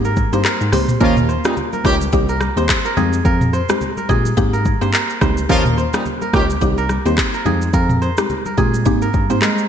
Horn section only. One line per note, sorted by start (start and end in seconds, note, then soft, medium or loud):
1.01 1.14 F3 loud
1.01 1.14 C#4 loud
1.01 1.14 F4 loud
1.45 1.54 A#2 medium
1.45 1.54 G3 medium
1.45 1.54 D#4 medium
1.85 1.95 D#3 medium
1.85 1.95 C#4 medium
1.85 1.95 G4 medium
5.49 5.62 F3 loud
5.49 5.62 C#4 loud
5.49 5.62 F4 loud
5.94 6.03 A#2 medium
5.94 6.03 G3 medium
5.94 6.03 D#4 medium
6.34 6.44 D#3 medium
6.34 6.43 C#4 medium
6.34 6.44 G4 medium